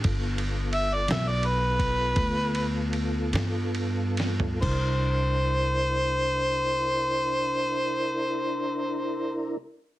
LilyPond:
<<
  \new Staff \with { instrumentName = "Harmonica" } { \time 12/8 \key g \dorian \tempo 4. = 44 r4 e''16 d''16 e''16 d''16 b'2 r2 | c''1. | }
  \new Staff \with { instrumentName = "Tonewheel organ" } { \time 12/8 \key g \dorian <b f' a'>1. | <d' e' bes'>1. | }
  \new Staff \with { instrumentName = "Upright bass" } { \clef bass \time 12/8 \key g \dorian g,,4. b,,4. d,4. g,4. | c,1. | }
  \new DrumStaff \with { instrumentName = "Drums" } \drummode { \time 12/8 <bd cymr>8 cymr8 cymr8 <cymr sn>8 cymr8 <bd cymr>8 <bd cymr>8 cymr8 cymr8 <cymr sn>8 cymr8 <cymr sn>16 tomfh16 | <cymc bd>4. r4. r4. r4. | }
>>